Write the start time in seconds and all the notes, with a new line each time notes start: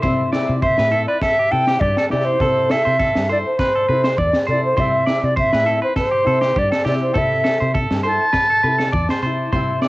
0.02 C3 G3 C4 E4 C5, kick
0.32 C4 E4 D5, snare
0.49 C3
0.62 C5 E5, kick
0.78 A2 B4, snare
0.90 C4 E4 A4
1.07 B4 D5
1.21 A4 E5, kick, snare
1.39 G4
1.51 C3 C4 E4 A4 G5
1.67 G4, snare
1.80 G2 G4 D5, kick
1.97 A4, snare
2.10 C3 C4 E4 G4 D5, snare
2.25 C5
2.40 C3 C4 E4 A4, kick
2.69 E4 A4 E5, snare
2.85 C3 C5
2.99 A4, kick, snare
3.15 G2, snare
3.29 E4 A4 C5 D5
3.46 C5
3.59 B4, kick, snare
3.75 A4
3.89 C3 E4 A4 B4
4.04 C5, snare
4.18 E2 D5, kick
4.33 snare
4.47 C3 A4 C5 D5
4.52 E4
4.65 C5
4.76 C3 G3 C4 E4 C5 E5, kick
5.07 E4 D5, snare
5.11 C4
5.23 C3 D5
5.36 C5 E5, kick
5.53 A2 B4, snare
5.65 C4 E4 A4
5.82 B4 C5
5.96 A4 C5, kick, snare
6.11 G4
6.25 C3 C4 E4 A4
6.41 G4, snare
6.56 G2 G4 D5, kick
6.72 A4, snare
6.85 C3 C4 E4 G4 D5, snare
7.02 C5
7.13 C3 C4 E4 A4, kick
7.18 E5
7.44 E4 A4, snare
7.60 C3 C5
7.74 A4, kick
7.91 G2, snare
8.03 E4 A4 C5 A5
8.33 B4, kick, snare
8.50 A4
8.63 C3 A4 B4
8.67 E4
8.78 A4, snare
8.92 E2 D5, kick
9.09 C5, snare
9.23 C3 E4 C5
9.52 C3 G3 C4 E4 C5, kick
9.81 C4 E4 D5, snare